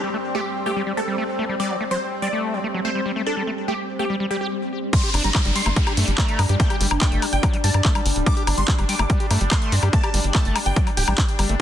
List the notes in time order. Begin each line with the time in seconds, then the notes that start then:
Already playing: G3 C4 G4 D5 D6
0.03 G3
0.14 A3
0.35 A3 G4
0.66 A3 G4
0.76 G3
0.87 G3
0.97 A3 A4
1.08 G3
1.18 A3
1.39 A3
1.49 G3
1.60 G3 D5
1.70 F#3
1.81 A3
1.91 F#3 C5
2.22 G3 D5
2.33 A3
2.54 F#3
2.64 A3
2.74 F#3
2.85 A3 C5
2.95 G3
3.06 G3
3.16 A3
3.26 D4 A4
3.37 G3
3.47 A3
3.68 A3 G4
3.99 A3 G4
4.10 G3
4.20 G3
4.31 G3 G4
4.41 G4
4.93 G3 D4 C6, kick, closed hi-hat, crash, downlifter
5.03 G4, closed hi-hat
5.14 G1 D4, open hi-hat, high woodblock
5.24 G1 G3 A#5, closed hi-hat
5.35 G3, kick, clap, closed hi-hat, high woodblock
5.45 G1 G3, closed hi-hat
5.56 G3 C6, open hi-hat
5.66 G1 A3, closed hi-hat, high woodblock
5.76 G3, kick, closed hi-hat
5.87 G4, closed hi-hat, high woodblock
5.97 G2 A3, open hi-hat
6.08 G1 G3, closed hi-hat
6.18 A3 A#5, kick, clap, closed hi-hat, high woodblock
6.29 closed hi-hat
6.39 G2 G3, open hi-hat, high woodblock
6.49 G2 G4, closed hi-hat
6.60 A3 G5, kick, closed hi-hat
6.70 G4, closed hi-hat, high woodblock
6.81 G1 G3, open hi-hat
6.91 G1, high woodblock
7.01 A3 G5, kick, clap, closed hi-hat
7.12 G1, closed hi-hat
7.22 G3, open hi-hat, high woodblock
7.33 G1 G5, closed hi-hat
7.43 F#3, kick, closed hi-hat, high woodblock
7.54 G3, closed hi-hat
7.64 G2 G3 A5, open hi-hat
7.74 G2, closed hi-hat, high woodblock
7.85 A3, kick, clap, closed hi-hat
7.95 G3, closed hi-hat, high woodblock
8.06 G1, open hi-hat
8.16 D1, closed hi-hat
8.26 G3 D6, kick, closed hi-hat, high woodblock
8.37 G4, closed hi-hat
8.47 G1 D4, open hi-hat, high woodblock
8.58 G1 G3 C6, closed hi-hat
8.68 G3, kick, clap, closed hi-hat
8.79 G1 G3, closed hi-hat, high woodblock
8.89 G3 D6, open hi-hat
8.99 G1 A3, closed hi-hat, high woodblock
9.10 G3, kick, closed hi-hat
9.20 G4, closed hi-hat
9.31 G2 A3, open hi-hat, high woodblock
9.41 G1 G3, closed hi-hat
9.51 A3 C6, kick, clap, closed hi-hat, high woodblock
9.62 closed hi-hat
9.72 G2 G3, open hi-hat
9.83 G2 G4, closed hi-hat, high woodblock
9.93 A3 A5, kick, closed hi-hat
10.03 G4, closed hi-hat, high woodblock
10.14 G1 G3, open hi-hat
10.24 G1, closed hi-hat
10.35 A3 A5, kick, clap, closed hi-hat, high woodblock
10.45 G1, closed hi-hat
10.56 G3, open hi-hat, high woodblock
10.66 G1 G5, closed hi-hat
10.76 F#3, kick, closed hi-hat
10.87 G3, closed hi-hat, high woodblock
10.97 D1 G4 G5, open hi-hat
11.08 A1 G3, closed hi-hat, high woodblock
11.18 D4, kick, clap, closed hi-hat
11.29 closed hi-hat
11.39 G1 G3, open hi-hat, high woodblock
11.49 G1 A3, closed hi-hat